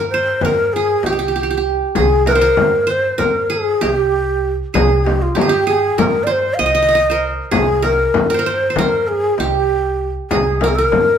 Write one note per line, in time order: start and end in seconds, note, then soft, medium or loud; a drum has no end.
0.00 0.31 G2 medium
0.00 0.37 G#4 medium
0.00 0.44 A#4 medium
0.09 0.43 C5 medium
0.14 1.19 C5 medium
0.41 0.94 G2 medium
0.41 1.58 A#4 medium
0.41 0.46 B4 medium
0.41 frame drum medium
0.45 0.74 A#4 medium
0.73 1.05 G#4 medium
0.73 1.12 G#4 medium
1.03 1.81 C2 medium
1.03 1.73 G4 medium
1.03 1.12 G4 medium
1.03 frame drum medium
1.13 1.18 G4 medium
1.19 1.28 G4 medium
1.28 1.35 G4 soft
1.36 1.43 G4 medium
1.43 1.50 G4 medium
1.51 1.57 G4 medium
1.57 2.02 G4 soft
1.95 2.48 C2 medium
1.95 3.17 G#4 medium
1.95 2.25 G#4 medium
1.95 frame drum medium
2.26 2.41 A#4 medium
2.26 2.33 B4 medium
2.26 frame drum medium
2.32 2.92 A#4 loud
2.32 2.86 C5 medium
2.41 3.18 A#4 medium
2.57 3.10 G2 medium
2.57 frame drum medium
2.87 3.92 C5 medium
2.87 3.21 C5 medium
3.18 3.72 G2 medium
3.18 4.31 A#4 medium
3.18 3.54 A#4 medium
3.18 frame drum medium
3.50 3.87 G#4 medium
3.50 3.84 G#4 medium
3.81 4.60 C2 medium
3.81 4.80 G4 medium
3.81 4.52 G4 medium
3.81 frame drum medium
4.74 5.26 C2 loud
4.74 5.41 G#4 medium
4.74 5.06 G#4 medium
4.74 frame drum medium
5.05 5.23 G4 medium
5.05 frame drum medium
5.22 5.40 F4 medium
5.35 5.47 G4 medium
5.35 5.67 G4 loud
5.35 frame drum medium
5.41 5.55 G#4 medium
5.49 5.73 G4 medium
5.67 6.88 G#4 medium
5.67 6.00 G#4 medium
5.98 6.50 G2 medium
5.98 7.11 A#4 medium
5.98 6.25 A#4 medium
5.98 frame drum medium
6.23 7.09 C5 medium
6.23 6.33 D5 medium
6.31 6.56 C5 medium
6.54 6.62 F5 medium
6.59 7.38 C2 medium
6.59 6.65 D#5 medium
6.59 7.30 D#5 loud
6.59 frame drum medium
6.66 6.74 D#5 medium
6.75 6.82 D#5 medium
6.82 6.88 D#5 medium
6.89 6.95 D#5 medium
6.95 7.90 D#5 medium
7.10 7.82 A#4 medium
7.10 8.15 C5 medium
7.51 8.05 C2 loud
7.51 8.73 G#4 medium
7.51 7.86 G#4 medium
7.51 frame drum loud
7.82 8.30 A#4 medium
7.82 8.48 A#4 medium
7.82 frame drum medium
8.14 8.67 G2 medium
8.14 frame drum medium
8.30 8.39 A#4 medium
8.34 8.46 C5 medium
8.39 8.78 A#4 medium
8.46 8.70 C5 medium
8.46 8.78 C5 medium
8.70 9.76 C5 medium
8.76 9.29 G2 medium
8.76 9.92 A#4 medium
8.76 8.81 B4 medium
8.76 frame drum medium
8.80 9.09 A#4 medium
9.07 9.40 G#4 medium
9.38 10.17 C2 medium
9.38 10.08 G4 medium
9.38 10.37 G4 medium
9.38 frame drum medium
10.31 10.83 C2 medium
10.31 10.63 G#4 medium
10.31 11.18 G#4 medium
10.31 frame drum medium
10.61 10.70 A#4 medium
10.61 10.78 A#4 medium
10.61 frame drum medium
10.68 10.77 G#4 medium
10.75 11.18 A#4 medium
10.92 11.18 G2 medium
10.92 frame drum medium